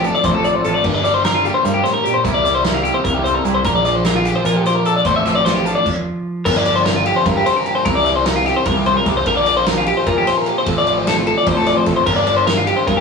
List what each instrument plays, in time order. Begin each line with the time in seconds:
Already playing: clean electric guitar A2 F3 F4 A4, overdriven electric guitar A2 F3 A3 C4 F4
0.04 clean electric guitar D4 A4, closed hi-hat
0.15 clean electric guitar D5
0.24 picked electric bass A1, clean electric guitar A2 C5, kick, closed hi-hat
0.35 clean electric guitar A4
0.44 clean electric guitar A4 D5, closed hi-hat
0.55 clean electric guitar C5
0.64 picked electric bass A1, clean electric guitar F4 A4, closed hi-hat
0.74 clean electric guitar D5
0.84 picked electric bass G1, clean electric guitar G2 A#4, overdriven electric guitar G2 D3 G3 A#3 D4, kick, crash
0.95 clean electric guitar D5
1.03 clean electric guitar G3 D5, snare, closed hi-hat
1.14 clean electric guitar C5
1.23 clean electric guitar C4 A#4, snare, closed hi-hat
1.34 clean electric guitar D4 F4
1.45 clean electric guitar A#3 G4, closed hi-hat
1.54 clean electric guitar C5
1.64 clean electric guitar G2 A#4, picked electric bass G2, closed hi-hat
1.74 clean electric guitar G4
1.84 clean electric guitar A2 C5, snare, closed hi-hat
1.94 clean electric guitar A#4
2.04 clean electric guitar A#2 G4, closed hi-hat
2.14 clean electric guitar C5
2.24 picked electric bass C2, overdriven electric guitar C3 G3 A#3 E4, clean electric guitar C3 G3 A#3 E4 G4 A#4, kick, closed hi-hat
2.34 clean electric guitar D5
2.45 clean electric guitar G3 D5, snare, closed hi-hat
2.55 clean electric guitar C5
2.64 clean electric guitar E4 A#4, snare, closed hi-hat
2.74 clean electric guitar F4
2.83 clean electric guitar A#3 G4, closed hi-hat
2.94 clean electric guitar C5
3.04 picked electric bass C2, clean electric guitar G2 A#4, kick, closed hi-hat
3.14 clean electric guitar G4
3.24 clean electric guitar A4 C5, closed hi-hat
3.35 clean electric guitar A#4
3.45 picked electric bass C2, clean electric guitar E4 G4, closed hi-hat
3.54 clean electric guitar C5
3.64 picked electric bass A#1, clean electric guitar A#2 A#4, overdriven electric guitar A#2 D3 F3 A#3 D4, kick, closed hi-hat
3.75 clean electric guitar D5
3.85 clean electric guitar F3 D5, snare, closed hi-hat
3.95 clean electric guitar C5
4.04 clean electric guitar C4 A#4, snare, closed hi-hat
4.14 clean electric guitar D4 F4
4.25 clean electric guitar G4, snare, closed hi-hat
4.36 clean electric guitar C5
4.44 picked electric bass A#2, clean electric guitar F3 A#4, closed hi-hat
4.56 clean electric guitar G4
4.64 clean electric guitar G4 C5, snare, closed hi-hat
4.76 clean electric guitar A#4
4.85 clean electric guitar D4 A4, closed hi-hat
4.96 clean electric guitar D5
5.05 picked electric bass A1, overdriven electric guitar A2 F3 A3 C4 F4, clean electric guitar A2 C5, kick, closed hi-hat
5.16 clean electric guitar E5
5.25 clean electric guitar F3 E5, snare, closed hi-hat
5.35 clean electric guitar D5
5.45 clean electric guitar F4 C5, snare, closed hi-hat
5.55 clean electric guitar G4
5.65 clean electric guitar D4 A4, closed hi-hat
5.75 clean electric guitar D5
5.86 kick, crash
6.45 picked electric bass G1, overdriven electric guitar G2 D3 G3 A#3 D4, clean electric guitar A#4, kick, crash
6.56 clean electric guitar D5
6.66 clean electric guitar D5, ride
6.76 clean electric guitar C5
6.85 clean electric guitar A#4, snare, ride
6.96 clean electric guitar F4
7.06 clean electric guitar G4, ride
7.16 clean electric guitar C5
7.26 picked electric bass G2, clean electric guitar A#4, kick, snare, ride
7.37 clean electric guitar G4
7.46 clean electric guitar C5, snare, ride
7.56 clean electric guitar A#4
7.66 clean electric guitar G4, ride
7.75 clean electric guitar C5
7.85 picked electric bass C2, overdriven electric guitar C3 G3 A#3 E4, clean electric guitar A#4, kick, ride
7.95 clean electric guitar D5
8.05 clean electric guitar D5, snare, ride
8.16 clean electric guitar C5
8.25 clean electric guitar A#4, snare, ride
8.36 clean electric guitar F4
8.46 clean electric guitar G4, snare, ride
8.56 clean electric guitar C5
8.66 picked electric bass C2, clean electric guitar A#4, kick, ride
8.77 clean electric guitar G4
8.86 clean electric guitar C5, ride
8.97 clean electric guitar A#4
9.06 picked electric bass C2, clean electric guitar G4, kick, snare, ride
9.17 clean electric guitar C5
9.26 picked electric bass A#1, overdriven electric guitar A#2 D3 F3 A#3 F4, clean electric guitar A#4, kick, ride
9.37 clean electric guitar D5
9.46 clean electric guitar D5, ride
9.57 clean electric guitar C5
9.66 clean electric guitar A#4, snare, ride
9.77 clean electric guitar F4
9.86 clean electric guitar G4, ride
9.97 clean electric guitar C5
10.06 picked electric bass A#2, clean electric guitar A#4, kick, ride
10.18 clean electric guitar G4
10.27 clean electric guitar C5, snare, ride
10.38 clean electric guitar A#4
10.46 clean electric guitar G4, ride
10.58 clean electric guitar C5
10.66 picked electric bass A1, overdriven electric guitar A2 F3 A3 C4 F4, clean electric guitar A4, kick, ride
10.78 clean electric guitar D5
10.87 clean electric guitar D5, ride
10.98 clean electric guitar C5
11.07 clean electric guitar A4, snare, ride
11.17 clean electric guitar F4
11.27 clean electric guitar A4, ride
11.38 clean electric guitar D5
11.46 picked electric bass A1, clean electric guitar C5, kick, ride
11.57 clean electric guitar A4
11.66 clean electric guitar D5, snare, ride
11.77 clean electric guitar C5
11.86 picked electric bass A1, clean electric guitar A4, kick, snare, ride
11.96 clean electric guitar C5
12.06 picked electric bass G1, overdriven electric guitar G2 D3 G3 A#3 D4, clean electric guitar A#4, kick, crash
12.16 clean electric guitar D5
12.27 clean electric guitar D5, ride
12.37 clean electric guitar C5
12.47 clean electric guitar A#4, snare, ride
12.57 clean electric guitar F4
12.67 clean electric guitar G4, ride
12.77 clean electric guitar C5
12.87 picked electric bass G2, clean electric guitar A#4, kick, ride
12.97 clean electric guitar G4